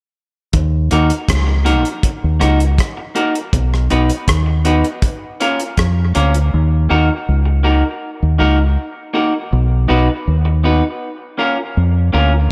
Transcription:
0.53 0.90 D#2 loud
0.53 kick loud
0.53 closed hi-hat medium
0.91 1.10 D#2 loud
0.91 1.10 A#3 medium
0.91 1.10 D#4 medium
0.91 1.10 F#4 medium
0.91 1.10 A#4 medium
0.91 closed hi-hat medium
1.10 closed hi-hat medium
1.29 1.83 C#2 medium
1.29 kick loud
1.29 cross-stick loud
1.29 closed hi-hat loud
1.47 muted clean electric guitar stroke medium
1.65 1.84 A#3 medium
1.65 1.84 D#4 medium
1.65 1.84 F#4 medium
1.65 1.84 A#4 medium
1.65 closed hi-hat medium
1.85 closed hi-hat soft
2.03 kick loud
2.03 closed hi-hat medium
2.24 2.41 D#2 medium
2.40 2.77 C#2 medium
2.40 2.59 A#3 medium
2.40 2.59 D#4 medium
2.40 2.59 F#4 medium
2.40 2.60 A#4 medium
2.40 cross-stick medium
2.40 closed hi-hat medium
2.60 closed hi-hat soft
2.78 kick loud
2.78 cross-stick medium
2.78 closed hi-hat medium
2.97 muted clean electric guitar stroke soft
3.15 3.34 A#3 medium
3.15 3.34 D#4 medium
3.15 3.34 F#4 medium
3.15 3.35 A#4 medium
3.15 closed hi-hat medium
3.35 closed hi-hat medium
3.53 3.89 B1 loud
3.53 kick loud
3.53 closed hi-hat medium
3.74 cross-stick medium
3.90 4.10 B1 medium
3.90 4.09 B3 medium
3.90 4.09 D#4 medium
3.90 4.10 F#4 medium
3.90 4.10 B4 medium
3.90 closed hi-hat medium
4.09 closed hi-hat medium
4.28 4.82 D#2 medium
4.28 kick loud
4.28 cross-stick loud
4.28 closed hi-hat loud
4.46 muted clean electric guitar stroke soft
4.65 4.84 B3 medium
4.65 4.84 D#4 medium
4.65 4.84 F#4 medium
4.65 4.85 B4 medium
4.65 closed hi-hat medium
4.84 closed hi-hat soft
5.02 kick loud
5.02 closed hi-hat medium
5.40 5.59 A#3 medium
5.40 5.59 C#4 medium
5.40 5.60 F4 medium
5.40 5.60 A#4 medium
5.40 closed hi-hat medium
5.60 closed hi-hat medium
5.77 6.14 F2 medium
5.77 kick loud
5.77 cross-stick loud
5.77 closed hi-hat medium
6.15 6.51 D2 medium
6.15 6.33 A#3 medium
6.15 6.34 C#4 medium
6.15 6.34 F4 medium
6.15 6.34 A#4 medium
6.15 closed hi-hat medium
6.34 closed hi-hat medium
6.54 6.89 D#2 loud
6.89 7.09 D#2 medium
6.89 7.08 A#3 medium
6.89 7.09 D#4 medium
6.89 7.09 F#4 medium
6.89 7.09 A#4 medium
7.29 7.82 C#2 medium
7.45 muted clean electric guitar stroke soft
7.63 7.83 A#3 medium
7.63 7.83 D#4 medium
7.63 7.83 F#4 medium
7.63 7.83 A#4 medium
8.22 8.39 D#2 medium
8.38 8.76 C#2 medium
8.38 8.58 A#3 medium
8.38 8.58 D#4 medium
8.38 8.58 F#4 medium
8.38 8.58 A#4 medium
9.13 9.32 A#3 medium
9.13 9.33 D#4 medium
9.13 9.33 F#4 medium
9.13 9.33 A#4 medium
9.53 9.88 B1 loud
9.88 10.08 B1 medium
9.88 10.07 B3 medium
9.88 10.07 D#4 medium
9.88 10.08 F#4 medium
9.88 10.08 B4 medium
10.27 10.81 D#2 medium
10.45 muted clean electric guitar stroke medium
10.64 10.82 B3 medium
10.64 10.83 D#4 medium
10.64 10.83 F#4 medium
10.64 10.83 B4 medium
11.38 11.57 A#3 medium
11.38 11.57 C#4 medium
11.38 11.57 F4 medium
11.38 11.57 A#4 medium
11.77 12.12 F2 medium
12.13 12.49 D2 medium
12.13 12.32 A#3 medium
12.13 12.32 C#4 medium
12.13 12.32 F4 medium
12.13 12.32 A#4 medium

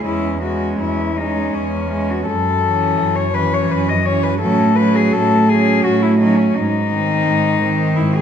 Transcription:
0.05 0.71 E2 medium
0.05 0.41 G#3 medium
0.05 0.41 C#4 medium
0.05 0.41 E4 loud
0.41 1.15 G#3 medium
0.41 1.15 C#4 medium
0.41 0.79 F#4 loud
0.79 1.45 E2 medium
0.79 1.19 E4 loud
1.16 1.90 G#3 medium
1.16 1.89 C#4 medium
1.16 1.55 D#4 loud
1.54 2.20 E2 medium
1.54 2.12 C#4 loud
1.91 2.27 G#3 medium
1.91 2.27 C#4 medium
2.10 2.26 F#4 loud
2.26 2.90 F#2 medium
2.26 3.17 A4 loud
2.63 3.32 E3 medium
2.63 3.32 C#4 medium
3.00 3.61 F#2 medium
3.16 3.35 C#5 loud
3.34 4.03 E3 medium
3.34 4.04 C#4 medium
3.34 3.55 B4 loud
3.54 3.73 C#5 loud
3.71 4.33 F#2 loud
3.71 3.90 B4 loud
3.89 4.07 D#5 loud
4.04 4.40 E3 medium
4.04 4.41 C#4 medium
4.04 4.25 C#5 loud
4.23 4.40 B4 loud
4.41 5.05 A2 loud
4.41 4.76 F#3 medium
4.41 4.76 C#4 medium
4.41 4.77 A4 loud
4.76 5.48 F#3 medium
4.76 5.48 C#4 medium
4.76 4.97 B4 loud
4.95 5.14 G#4 loud
5.13 5.77 A2 loud
5.13 5.51 A4 loud
5.49 6.19 F#3 medium
5.49 6.19 C#4 medium
5.49 5.85 G#4 loud
5.84 6.46 A2 loud
5.84 6.04 F#4 loud
6.02 6.19 E4 loud
6.20 6.54 F#3 medium
6.20 6.55 C#4 medium
6.20 6.39 D#4 loud
6.37 6.56 C#4 loud
6.54 7.18 G#2 medium
6.54 7.97 D#4 loud
6.91 7.60 D#3 medium
6.91 7.60 C4 medium
7.27 7.88 G#2 medium
7.62 8.22 D#3 medium
7.62 8.22 C4 medium
7.96 8.22 G#2 medium
7.96 8.17 E4 loud
8.15 8.22 G#4 loud

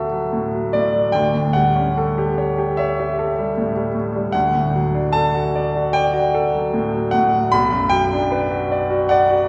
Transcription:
0.00 1.10 D2 soft
0.00 0.33 A2 soft
0.00 0.13 F#3 soft
0.00 1.17 A3 soft
0.00 1.17 F#4 soft
0.00 1.17 A4 soft
0.00 0.73 E5 medium
0.00 1.17 F#5 medium
0.13 0.46 F#3 soft
0.33 0.66 A2 soft
0.55 0.87 F#3 soft
0.73 1.06 A2 soft
0.73 1.14 D5 medium
0.94 1.14 F#3 soft
1.12 4.31 D2 medium
1.12 1.53 G5 medium
1.35 1.67 A2 soft
1.53 1.88 G3 soft
1.53 2.78 F#5 medium
1.76 2.08 C#4 soft
1.98 2.30 A4 soft
2.18 2.51 G4 soft
2.38 2.71 C#5 soft
2.58 2.91 G4 soft
2.77 3.11 C#5 soft
2.77 3.96 E5 medium
3.00 3.31 G4 soft
3.19 3.50 A4 soft
3.39 3.70 G3 soft
3.57 3.88 A2 soft
3.77 4.08 G3 soft
3.95 4.26 A2 soft
4.16 4.35 G3 soft
4.32 7.48 D2 medium
4.32 5.13 F#5 medium
4.55 4.86 A2 soft
4.76 5.07 F#3 soft
4.95 5.27 D4 soft
5.13 5.47 A4 soft
5.13 5.94 A5 medium
5.35 5.67 F#4 soft
5.55 5.87 D5 soft
5.76 6.07 F#4 soft
5.93 6.27 D5 soft
5.93 7.12 G5 medium
6.13 6.45 F#4 soft
6.34 6.66 A4 soft
6.54 6.85 F#3 soft
6.74 7.05 A2 soft
6.95 7.26 F#3 soft
7.11 7.45 A2 soft
7.11 7.52 F#5 medium
7.33 7.53 F#3 soft
7.52 9.48 B1 medium
7.52 7.92 B5 medium
7.72 8.04 F#2 soft
7.89 8.24 F#3 soft
7.89 9.08 G5 medium
8.13 8.44 D4 soft
8.32 8.63 B4 soft
8.51 8.82 F#4 soft
8.72 9.02 D5 soft
8.90 9.21 F#4 medium
9.09 9.41 D5 medium
9.09 9.48 F#5 medium
9.31 9.48 F#4 soft

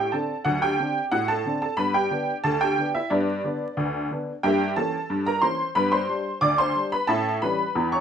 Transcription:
0.00 0.13 G4 medium
0.00 0.13 G5 loud
0.12 0.31 D3 soft
0.12 0.31 C4 medium
0.12 0.32 D4 medium
0.12 0.44 A4 medium
0.12 0.44 A5 medium
0.44 0.74 D2 loud
0.44 0.65 F#3 medium
0.44 0.61 F#4 medium
0.44 0.62 F#5 loud
0.62 1.09 G4 medium
0.62 1.02 G5 loud
0.80 0.98 D3 medium
0.80 0.98 C4 medium
0.80 0.98 D4 medium
1.11 1.40 A2 loud
1.11 1.28 F#4 medium
1.11 1.29 F#5 loud
1.28 1.60 A4 medium
1.28 1.60 A5 loud
1.45 1.64 D3 medium
1.45 1.64 C4 medium
1.45 1.65 D4 medium
1.62 1.78 A4 medium
1.62 1.79 A5 loud
1.77 2.06 G2 loud
1.77 1.98 B3 medium
1.77 1.94 B4 loud
1.77 1.94 B5 loud
1.94 2.42 G4 medium
1.94 2.35 G5 loud
2.11 2.29 D3 medium
2.11 2.29 B3 medium
2.11 2.30 D4 medium
2.44 2.73 D2 loud
2.44 2.60 A4 loud
2.44 2.61 A5 loud
2.61 2.93 G4 medium
2.61 2.88 G5 loud
2.78 2.97 D3 medium
2.78 2.97 B3 medium
2.78 2.97 D4 medium
2.95 3.11 E4 medium
2.95 3.11 E5 loud
3.10 3.39 G2 loud
3.10 3.31 B3 medium
3.10 3.44 D4 medium
3.10 4.07 B4 medium
3.10 4.06 D5 medium
3.44 3.63 D3 medium
3.44 3.63 B3 medium
3.44 3.63 D4 medium
3.77 4.06 D2 loud
4.11 4.29 D3 medium
4.11 4.30 B3 medium
4.11 4.30 D4 medium
4.43 4.72 G2 loud
4.43 4.64 A#3 medium
4.43 4.75 G4 medium
4.43 4.75 E5 medium
4.43 4.70 G5 loud
4.76 4.95 E3 medium
4.76 4.96 A#3 medium
4.76 4.96 C#4 medium
4.76 5.24 A4 medium
4.76 5.24 A5 loud
5.10 5.38 G2 loud
5.26 5.43 A#4 medium
5.26 5.43 A#5 loud
5.42 5.61 E3 medium
5.42 5.61 A#3 medium
5.42 5.61 C#4 medium
5.42 5.74 C5 medium
5.42 5.69 C6 loud
5.75 6.04 G2 loud
5.75 5.96 B3 medium
5.75 5.92 B4 loud
5.75 5.92 B5 loud
5.92 6.39 C5 medium
5.92 6.39 C6 loud
6.09 6.27 G3 medium
6.09 6.27 D4 medium
6.41 6.70 D2 loud
6.41 6.58 D5 loud
6.41 6.58 D6 loud
6.58 6.90 C5 loud
6.58 6.85 C6 loud
6.76 6.94 G3 medium
6.76 6.94 D4 medium
6.92 7.08 B4 medium
6.92 7.09 B5 loud
7.07 7.37 A2 loud
7.07 7.28 C#4 medium
7.07 7.40 A4 medium
7.07 7.40 E5 loud
7.07 7.35 A5 loud
7.42 7.61 E3 medium
7.42 7.61 G3 medium
7.42 7.61 C#4 medium
7.42 7.89 B4 medium
7.42 7.89 B5 loud
7.75 8.00 E2 loud
7.92 8.00 C#5 medium
7.92 8.00 C#6 loud

